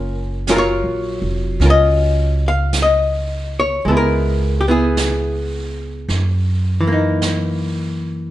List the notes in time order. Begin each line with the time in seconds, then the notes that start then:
Already playing: F#1 C#4 F4 A#4
0.47 F#3 C#4 F4 A#4, brush sweep, snare, hi-hat pedal
0.56 F4 A#4 C#5
0.84 A#1
1.22 F1
1.60 C#2 C#4 F4, brush sweep, snare
1.65 A#4
1.70 D#5
2.48 F5
2.73 brush sweep, snare, hi-hat pedal
2.82 D#5
3.60 C#5
3.85 C#2 G#3 B3 A4, brush sweep
3.91 E4
3.97 A#4
4.61 G4
4.68 B3 E4 G#4
4.97 brush sweep, snare, hi-hat pedal
6.08 F#2, brush sweep, snare
6.81 E3
6.87 A#3
6.92 D#4
7.22 brush sweep, snare, hi-hat pedal